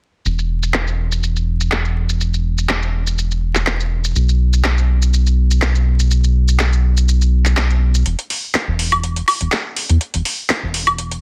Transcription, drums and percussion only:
0.26 shaker soft
0.39 shaker soft
0.63 shaker medium
0.74 clap loud
0.74 shaker soft
0.87 shaker soft
1.12 shaker medium
1.23 shaker soft
1.36 shaker soft
1.61 shaker medium
1.71 clap loud
1.71 shaker soft
1.85 shaker soft
2.09 shaker medium
2.21 shaker soft
2.34 shaker soft
2.58 shaker medium
2.69 clap loud
2.69 shaker soft
2.82 shaker soft
3.07 shaker medium
3.18 shaker soft
3.31 shaker soft
3.55 clap soft
3.55 shaker medium
3.67 clap loud
3.67 shaker soft
3.80 shaker soft
4.04 shaker medium
4.16 shaker soft
4.29 shaker soft
4.53 shaker medium
4.64 clap loud
4.64 shaker soft
4.78 shaker soft
5.02 shaker medium
5.14 shaker soft
5.27 shaker soft
5.51 shaker medium
5.62 clap loud
5.62 shaker soft
5.75 shaker soft
6.00 shaker medium
6.11 shaker soft
6.24 shaker soft
6.48 shaker medium
6.59 clap loud
6.59 shaker medium
6.73 shaker soft
6.97 shaker medium
7.09 shaker soft
7.22 shaker soft
7.45 clap soft
7.45 shaker medium
7.57 clap loud
7.57 shaker soft
7.70 shaker soft
7.95 shaker medium
8.06 closed hi-hat medium
8.19 closed hi-hat medium
8.30 open hi-hat loud
8.54 clap loud
8.54 closed hi-hat medium
8.79 open hi-hat medium
8.92 closed hi-hat medium
8.92 high woodblock medium
9.03 closed hi-hat medium
9.16 closed hi-hat soft
9.28 open hi-hat loud
9.28 high woodblock medium
9.41 closed hi-hat medium
9.52 clap loud
9.52 closed hi-hat medium
9.77 open hi-hat loud
9.89 closed hi-hat medium
10.01 closed hi-hat medium
10.14 closed hi-hat medium
10.25 open hi-hat loud
10.49 clap loud
10.49 closed hi-hat medium
10.74 open hi-hat loud
10.87 closed hi-hat soft
10.87 high woodblock medium
10.98 closed hi-hat medium
11.11 closed hi-hat soft

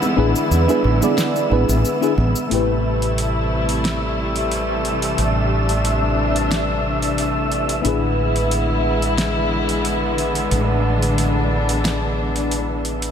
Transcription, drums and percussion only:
0.02 high bongo medium
0.02 high conga medium
0.02 shaker soft
0.36 shaker medium
0.51 high bongo medium
0.51 high conga medium
0.51 shaker medium
0.69 low conga medium
0.69 shaker soft
0.84 high bongo medium
1.02 high conga medium
1.02 low conga medium
1.02 shaker medium
1.18 snare medium
1.18 shaker soft
1.34 high bongo medium
1.34 shaker soft
1.51 high conga medium
1.69 high bongo medium
1.69 shaker medium
1.85 shaker soft
2.03 shaker soft
2.18 high bongo soft
2.18 high conga medium
2.36 shaker medium
2.51 open hi-hat soft
3.02 open hi-hat soft
3.18 open hi-hat soft
3.69 open hi-hat soft
3.85 snare medium
3.85 open hi-hat soft
4.36 open hi-hat soft
4.51 open hi-hat soft
4.85 open hi-hat soft
5.02 open hi-hat soft
5.18 open hi-hat soft
5.69 open hi-hat soft
5.85 open hi-hat soft
6.36 open hi-hat soft
6.51 snare medium
6.51 open hi-hat medium
7.02 open hi-hat soft
7.18 open hi-hat soft
7.52 open hi-hat soft
7.69 open hi-hat soft
7.85 open hi-hat soft
8.36 open hi-hat soft
8.51 open hi-hat soft
9.02 open hi-hat soft
9.18 snare medium
9.18 open hi-hat soft
9.69 open hi-hat soft
9.85 open hi-hat soft
10.18 open hi-hat soft
10.35 open hi-hat soft
10.51 open hi-hat soft
11.02 open hi-hat soft
11.18 open hi-hat soft
11.69 open hi-hat soft
11.85 snare medium
11.85 open hi-hat soft
12.36 open hi-hat soft
12.51 open hi-hat soft
12.85 open hi-hat soft
13.02 open hi-hat soft

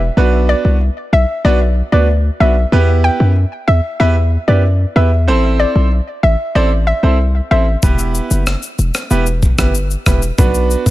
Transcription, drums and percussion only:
7.83 kick loud
7.83 shaker medium
7.99 shaker medium
8.15 shaker medium
8.31 shaker medium
8.47 cross-stick medium
8.47 shaker medium
8.63 shaker medium
8.79 shaker soft
8.95 cross-stick medium
8.95 shaker medium
9.11 shaker medium
9.27 shaker medium
9.43 kick medium
9.43 shaker soft
9.58 kick medium
9.58 cross-stick medium
9.58 shaker medium
9.75 shaker medium
9.91 shaker soft
10.06 kick medium
10.06 cross-stick medium
10.06 shaker medium
10.22 shaker medium
10.38 kick loud
10.38 shaker medium
10.54 shaker medium
10.71 shaker medium
10.86 kick medium
10.86 shaker medium

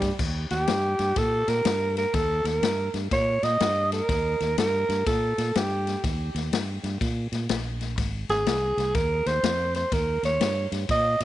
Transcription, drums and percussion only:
0.02 kick medium
0.02 snare soft
0.02 ride medium
0.19 kick loud
0.19 snare soft
0.19 crash medium
0.50 snare soft
0.50 ride medium
0.67 snare loud
0.67 ride medium
0.99 snare soft
0.99 ride medium
1.16 kick loud
1.16 snare soft
1.16 ride medium
1.48 snare soft
1.48 ride medium
1.65 snare loud
1.65 ride medium
1.97 snare soft
1.97 ride medium
2.14 kick loud
2.14 snare soft
2.14 ride medium
2.45 snare soft
2.45 ride medium
2.63 snare loud
2.63 ride medium
2.94 snare soft
2.94 ride medium
3.11 kick loud
3.11 snare soft
3.11 ride medium
3.43 snare soft
3.43 ride medium
3.60 snare loud
3.60 ride medium
3.92 snare soft
3.92 ride medium
4.09 kick loud
4.09 snare soft
4.09 ride medium
4.40 snare soft
4.40 ride soft
4.58 snare loud
4.58 ride medium
4.89 snare soft
4.89 ride medium
5.06 kick loud
5.06 snare soft
5.06 ride medium
5.38 snare soft
5.38 ride medium
5.55 snare loud
5.55 ride medium
5.87 snare soft
5.87 ride medium
6.04 kick loud
6.04 snare soft
6.04 ride medium
6.36 snare soft
6.36 ride medium
6.53 snare medium
6.53 ride medium
6.84 snare soft
6.84 ride medium
7.01 kick medium
7.01 snare soft
7.01 ride medium
7.32 snare soft
7.32 ride medium
7.49 snare loud
7.49 ride medium
7.81 snare soft
7.81 ride medium
7.98 kick loud
7.98 snare soft
7.98 ride medium
8.29 snare soft
8.29 ride soft
8.46 snare medium
8.46 ride medium
8.78 snare soft
8.78 ride medium
8.95 kick loud
8.95 snare soft
8.95 ride medium
9.26 snare soft
9.26 ride medium
9.44 snare loud
9.44 ride medium
9.74 snare soft
9.74 ride medium
9.92 kick loud
9.92 snare soft
9.92 ride medium
10.23 snare soft
10.23 ride medium
10.41 snare loud
10.41 ride medium
10.72 snare soft
10.72 ride medium
10.89 kick medium
10.89 snare soft
10.89 ride medium
11.20 snare soft
11.20 ride medium

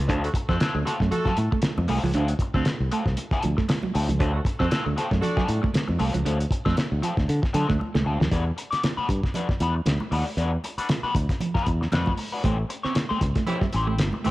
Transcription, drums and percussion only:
0.09 kick loud
0.09 closed hi-hat medium
0.24 closed hi-hat medium
0.34 kick medium
0.34 closed hi-hat medium
0.49 kick medium
0.49 snare soft
0.60 snare loud
0.60 closed hi-hat medium
0.60 high conga medium
0.87 snare soft
0.87 closed hi-hat medium
1.00 kick medium
1.00 snare soft
1.12 closed hi-hat medium
1.12 muted conga soft
1.12 low conga medium
1.26 kick medium
1.26 snare soft
1.37 closed hi-hat medium
1.37 muted conga medium
1.52 kick medium
1.62 snare loud
1.62 closed hi-hat medium
1.62 high conga medium
1.78 high conga medium
1.88 open hi-hat medium
2.04 high conga medium
2.14 closed hi-hat medium
2.28 closed hi-hat soft
2.39 kick medium
2.39 closed hi-hat medium
2.39 muted conga soft
2.54 kick medium
2.65 snare loud
2.65 closed hi-hat medium
2.65 high conga medium
2.91 closed hi-hat medium
3.06 kick medium
3.06 snare soft
3.17 closed hi-hat medium
3.17 muted conga soft
3.31 kick medium
3.31 snare soft
3.42 closed hi-hat medium
3.42 muted conga soft
3.58 kick medium
3.58 snare soft
3.69 snare loud
3.69 closed hi-hat medium
3.69 high conga medium
3.83 high conga medium
3.95 open hi-hat medium
4.08 closed hi-hat medium
4.08 high conga medium
4.20 kick medium
4.20 closed hi-hat medium
4.45 kick medium
4.45 closed hi-hat medium
4.60 kick medium
4.60 snare soft
4.71 snare loud
4.71 closed hi-hat medium
4.71 high conga medium
4.98 snare soft
4.98 closed hi-hat medium
5.11 kick medium
5.11 snare soft
5.22 closed hi-hat medium
5.22 muted conga medium
5.22 low conga medium
5.37 kick medium
5.37 snare soft
5.48 closed hi-hat medium
5.48 muted conga medium
5.64 kick medium
5.74 snare loud
5.74 closed hi-hat medium
5.74 high conga medium
5.88 high conga medium
5.99 open hi-hat medium
6.14 closed hi-hat medium
6.14 high conga medium
6.26 closed hi-hat medium
6.40 closed hi-hat soft
6.51 kick medium
6.51 closed hi-hat medium
6.66 kick medium
6.66 snare soft
6.77 snare loud
6.77 closed hi-hat medium
6.77 high conga medium
7.03 closed hi-hat medium
7.17 kick medium
7.17 snare soft
7.29 closed hi-hat medium
7.29 muted conga medium
7.43 kick loud
7.43 snare soft
7.54 closed hi-hat medium
7.54 muted conga medium
7.70 kick medium
7.70 snare soft
7.81 high conga medium
7.95 snare medium
7.95 high conga medium
8.21 snare medium
8.32 kick loud
8.32 closed hi-hat medium
8.58 closed hi-hat medium
8.72 snare soft
8.72 closed hi-hat medium
8.83 snare loud
8.83 closed hi-hat medium
8.83 high conga medium
9.09 kick loud
9.09 closed hi-hat medium
9.23 kick medium
9.23 snare soft
9.34 closed hi-hat medium
9.34 muted conga soft
9.34 low conga medium
9.49 kick medium
9.49 snare soft
9.60 closed hi-hat medium
9.60 muted conga medium
9.86 snare loud
9.86 closed hi-hat medium
9.86 high conga medium
10.00 high conga medium
10.12 open hi-hat medium
10.38 closed hi-hat medium
10.64 closed hi-hat medium
10.64 muted conga soft
10.78 closed hi-hat medium
10.89 snare loud
10.89 closed hi-hat medium
10.89 high conga medium
11.15 kick loud
11.15 closed hi-hat medium
11.29 kick medium
11.29 snare soft
11.29 closed hi-hat soft
11.41 closed hi-hat medium
11.41 muted conga medium
11.41 low conga medium
11.55 kick medium
11.55 snare soft
11.66 kick medium
11.66 closed hi-hat medium
11.66 muted conga medium
11.82 snare soft
11.92 snare loud
11.92 closed hi-hat medium
11.92 high conga medium
12.06 kick medium
12.06 high conga medium
12.18 open hi-hat medium
12.44 kick loud
12.44 closed hi-hat medium
12.70 closed hi-hat medium
12.85 snare soft
12.95 snare loud
12.95 closed hi-hat medium
12.95 high conga medium
13.21 kick loud
13.21 snare soft
13.21 closed hi-hat medium
13.35 kick medium
13.35 snare soft
13.35 closed hi-hat soft
13.47 closed hi-hat medium
13.47 muted conga soft
13.47 low conga medium
13.61 kick medium
13.61 snare soft
13.72 closed hi-hat medium
13.72 muted conga medium
13.98 snare loud
13.98 closed hi-hat medium
13.98 high conga medium
14.13 high conga medium
14.24 open hi-hat medium

